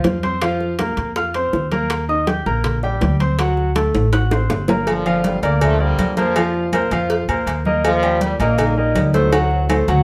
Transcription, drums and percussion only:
0.04 high bongo soft
0.04 low bongo medium
0.04 high conga medium
0.04 high timbale medium
0.04 low timbale medium
0.23 high conga medium
0.23 high timbale medium
0.42 high bongo medium
0.42 high conga soft
0.42 high timbale medium
0.60 high bongo soft
0.60 high conga soft
0.79 high bongo medium
0.79 high conga medium
0.79 high timbale medium
0.97 high bongo soft
0.97 high conga soft
0.97 high timbale medium
1.16 high bongo medium
1.16 high conga soft
1.34 high bongo soft
1.34 high conga soft
1.34 high timbale medium
1.53 high bongo soft
1.53 low bongo medium
1.53 high conga soft
1.72 high conga medium
1.72 high timbale medium
1.90 high bongo medium
1.90 high timbale medium
2.09 high bongo soft
2.09 high conga soft
2.27 high bongo medium
2.27 high conga loud
2.27 high timbale medium
2.46 high bongo soft
2.46 high conga soft
2.64 high bongo medium
2.64 high conga soft
2.64 low conga medium
2.64 high timbale medium
2.83 high bongo soft
2.83 high conga soft
3.01 high bongo soft
3.01 low bongo medium
3.01 high conga medium
3.01 high timbale medium
3.01 low timbale medium
3.20 high conga medium
3.20 high timbale medium
3.39 high bongo medium
3.39 high conga soft
3.39 high timbale medium
3.57 high bongo soft
3.57 high conga soft
3.75 high bongo medium
3.75 high conga medium
3.75 high timbale medium
3.94 high bongo soft
3.94 high conga soft
3.94 high timbale medium
4.13 high bongo medium
4.13 high conga soft
4.13 high timbale medium
4.31 high bongo loud
4.31 high conga soft
4.31 high timbale medium
4.50 high bongo medium
4.50 high conga soft
4.50 low timbale medium
4.68 low bongo loud
4.68 high conga medium
4.68 low timbale loud
4.87 cowbell loud
4.87 high conga soft
4.87 low agogo medium
5.06 high conga soft
5.06 low agogo medium
5.24 cowbell medium
5.24 high conga loud
5.43 cowbell medium
5.43 high conga soft
5.43 low agogo medium
5.61 cowbell loud
5.61 high conga soft
5.61 low conga medium
5.61 low agogo loud
5.80 high conga soft
5.98 cowbell medium
5.98 high conga medium
5.98 low agogo medium
6.17 cowbell medium
6.17 high conga medium
6.36 cowbell loud
6.36 high conga soft
6.36 low agogo loud
6.54 high conga soft
6.73 cowbell medium
6.73 high conga medium
6.73 low agogo loud
6.91 cowbell medium
6.91 high conga soft
6.91 low agogo medium
7.10 cowbell loud
7.10 high conga soft
7.28 high conga soft
7.28 low agogo loud
7.47 cowbell medium
7.47 high conga soft
7.47 low agogo medium
7.65 high conga medium
7.85 cowbell loud
7.85 low agogo loud
8.03 high conga soft
8.03 low agogo medium
8.21 cowbell medium
8.21 high conga loud
8.40 cowbell medium
8.40 high conga soft
8.40 low agogo medium
8.58 cowbell loud
8.58 high conga soft
8.58 low conga medium
8.58 low agogo loud
8.77 high conga soft
8.95 cowbell medium
8.95 high conga medium
8.95 low timbale medium
8.95 low agogo medium
9.14 cowbell medium
9.14 high conga medium
9.32 cowbell loud
9.32 high timbale medium
9.32 low agogo loud
9.50 high conga soft
9.69 cowbell medium
9.69 high conga medium
9.69 high timbale loud
9.69 low agogo loud
9.87 cowbell medium
9.87 high conga soft
9.87 low agogo medium

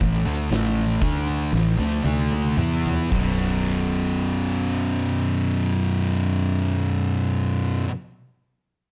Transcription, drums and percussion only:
0.01 kick loud
0.01 open hi-hat medium
0.50 snare loud
0.50 open hi-hat medium
1.02 kick loud
1.02 open hi-hat medium
1.55 snare medium
1.81 snare medium
2.06 high tom medium
2.32 high tom medium
2.59 mid tom medium
2.86 mid tom medium
3.12 kick loud
3.12 crash medium

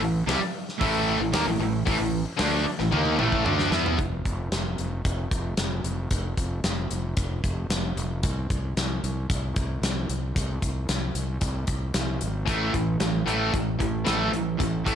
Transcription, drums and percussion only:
0.29 snare loud
0.29 open hi-hat medium
0.69 snare soft
0.81 kick loud
0.81 open hi-hat medium
1.33 snare loud
1.33 open hi-hat medium
1.87 kick loud
1.87 open hi-hat medium
2.39 snare loud
2.39 open hi-hat medium
2.79 snare soft
2.92 high tom medium
3.05 high tom medium
3.19 mid tom medium
3.32 kick medium
3.46 mid tom medium
3.59 snare medium
3.72 snare medium
3.86 floor tom medium
3.99 kick loud
3.99 closed hi-hat medium
4.25 kick medium
4.25 closed hi-hat soft
4.52 snare medium
4.52 closed hi-hat medium
4.78 closed hi-hat medium
5.05 kick loud
5.05 closed hi-hat medium
5.31 kick medium
5.31 closed hi-hat medium
5.57 snare loud
5.57 closed hi-hat medium
5.84 closed hi-hat medium
6.11 kick loud
6.11 closed hi-hat medium
6.37 kick medium
6.37 closed hi-hat medium
6.64 snare loud
6.64 closed hi-hat medium
6.91 closed hi-hat medium
7.17 kick loud
7.17 closed hi-hat medium
7.44 kick medium
7.44 closed hi-hat medium
7.70 snare loud
7.70 closed hi-hat medium
7.97 closed hi-hat medium
8.23 kick loud
8.23 closed hi-hat medium
8.50 kick medium
8.50 closed hi-hat medium
8.77 snare loud
8.77 closed hi-hat medium
9.04 closed hi-hat medium
9.30 kick loud
9.30 closed hi-hat medium
9.56 kick medium
9.56 closed hi-hat medium
9.83 snare loud
9.83 closed hi-hat medium
10.09 closed hi-hat medium
10.36 kick loud
10.36 closed hi-hat medium
10.62 kick medium
10.62 closed hi-hat medium
10.89 snare loud
10.89 closed hi-hat medium
11.15 closed hi-hat medium
11.41 kick loud
11.41 closed hi-hat medium
11.67 kick medium
11.67 closed hi-hat medium
11.94 snare loud
11.94 closed hi-hat medium
12.21 closed hi-hat medium
12.48 kick loud
12.48 closed hi-hat medium
12.74 kick medium
12.74 closed hi-hat medium
13.00 snare loud
13.00 closed hi-hat medium
13.28 closed hi-hat medium
13.54 kick loud
13.54 closed hi-hat medium
13.80 kick medium
13.80 closed hi-hat medium
14.06 snare loud
14.06 closed hi-hat medium
14.33 closed hi-hat medium
14.60 kick medium
14.60 closed hi-hat medium
14.86 kick medium
14.86 closed hi-hat medium

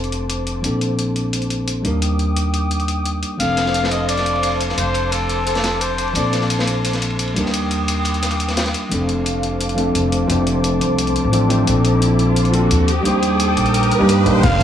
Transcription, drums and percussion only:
0.04 closed hi-hat soft
0.12 closed hi-hat medium
0.30 closed hi-hat medium
0.47 closed hi-hat medium
0.64 closed hi-hat medium
0.81 closed hi-hat medium
0.99 closed hi-hat medium
1.16 closed hi-hat medium
1.33 closed hi-hat medium
1.42 closed hi-hat soft
1.50 closed hi-hat medium
1.68 closed hi-hat medium
1.85 closed hi-hat medium
2.02 closed hi-hat medium
2.19 closed hi-hat medium
2.37 closed hi-hat medium
2.54 closed hi-hat medium
2.71 closed hi-hat medium
2.80 closed hi-hat soft
2.88 closed hi-hat medium
3.06 closed hi-hat medium
3.23 closed hi-hat medium
3.40 closed hi-hat medium
3.40 ride medium
3.57 snare soft
3.57 closed hi-hat medium
3.57 ride medium
3.66 snare soft
3.74 closed hi-hat medium
3.74 ride medium
3.84 snare soft
3.91 closed hi-hat medium
3.91 ride medium
4.09 closed hi-hat medium
4.09 ride medium
4.18 snare soft
4.18 closed hi-hat soft
4.26 closed hi-hat medium
4.26 ride medium
4.35 ride soft
4.43 closed hi-hat medium
4.43 ride medium
4.52 ride soft
4.61 closed hi-hat medium
4.61 ride medium
4.69 snare soft
4.78 closed hi-hat medium
4.78 ride medium
4.94 closed hi-hat medium
4.94 ride medium
5.12 closed hi-hat medium
5.12 ride medium
5.29 closed hi-hat medium
5.29 ride medium
5.47 closed hi-hat medium
5.47 ride medium
5.55 snare medium
5.55 closed hi-hat soft
5.64 snare medium
5.64 closed hi-hat medium
5.64 ride medium
5.72 ride soft
5.81 closed hi-hat medium
5.81 ride medium
5.98 closed hi-hat medium
5.98 ride medium
6.08 ride soft
6.15 closed hi-hat medium
6.15 ride medium
6.33 snare soft
6.33 closed hi-hat medium
6.33 ride medium
6.41 snare soft
6.50 closed hi-hat medium
6.50 ride medium
6.59 snare medium
6.67 closed hi-hat medium
6.67 ride medium
6.85 closed hi-hat medium
6.85 ride medium
6.93 snare soft
6.93 closed hi-hat soft
7.02 closed hi-hat medium
7.02 ride medium
7.10 ride soft
7.19 closed hi-hat medium
7.19 ride medium
7.28 ride soft
7.36 closed hi-hat medium
7.36 ride medium
7.46 snare soft
7.54 closed hi-hat medium
7.54 ride medium
7.71 closed hi-hat medium
7.71 ride medium
7.88 closed hi-hat medium
7.88 ride medium
8.05 closed hi-hat medium
8.05 ride medium
8.14 closed hi-hat soft
8.23 snare soft
8.23 closed hi-hat medium
8.23 ride medium
8.30 closed hi-hat soft
8.30 ride medium
8.40 closed hi-hat medium
8.48 snare soft
8.48 closed hi-hat soft
8.48 ride medium
8.57 snare medium
8.57 closed hi-hat medium
8.57 ride medium
8.66 snare soft
8.66 closed hi-hat soft
8.74 closed hi-hat medium
8.74 ride medium
8.92 closed hi-hat loud
9.09 closed hi-hat medium
9.26 closed hi-hat medium
9.43 closed hi-hat medium
9.61 closed hi-hat medium
9.69 closed hi-hat soft
9.78 closed hi-hat medium
9.95 closed hi-hat medium
10.12 closed hi-hat medium
10.30 closed hi-hat medium
10.47 closed hi-hat medium
10.64 closed hi-hat medium
10.81 closed hi-hat medium
10.98 closed hi-hat medium
11.07 closed hi-hat soft
11.16 closed hi-hat medium
11.33 closed hi-hat medium
11.50 closed hi-hat medium
11.67 closed hi-hat medium
11.85 closed hi-hat medium
12.02 closed hi-hat medium
12.19 closed hi-hat medium
12.36 closed hi-hat medium
12.45 closed hi-hat soft
12.54 closed hi-hat medium
12.71 closed hi-hat medium
12.88 closed hi-hat medium
13.05 closed hi-hat medium
13.23 closed hi-hat medium
13.40 closed hi-hat medium
13.57 closed hi-hat medium
13.66 closed hi-hat soft
13.74 closed hi-hat medium
13.83 closed hi-hat soft
13.92 closed hi-hat medium
14.09 closed hi-hat medium
14.26 closed hi-hat medium
14.43 kick loud
14.43 closed hi-hat loud
14.43 ride medium
14.43 crash loud
14.60 ride medium

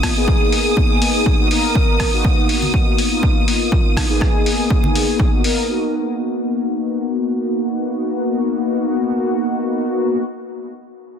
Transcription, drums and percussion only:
0.03 kick medium
0.03 cross-stick medium
0.03 open hi-hat loud
0.28 kick loud
0.52 open hi-hat medium
0.77 kick loud
1.02 open hi-hat loud
1.26 kick loud
1.51 open hi-hat medium
1.75 kick loud
2.00 kick medium
2.00 cross-stick medium
2.00 open hi-hat medium
2.25 kick loud
2.49 open hi-hat medium
2.62 high conga medium
2.74 kick loud
2.98 open hi-hat medium
3.23 kick loud
3.48 open hi-hat medium
3.72 kick loud
3.97 kick medium
3.97 cross-stick medium
3.97 open hi-hat medium
4.21 kick loud
4.21 cross-stick medium
4.46 open hi-hat medium
4.70 kick loud
4.84 high conga medium
4.95 open hi-hat medium
5.20 kick loud
5.44 open hi-hat medium

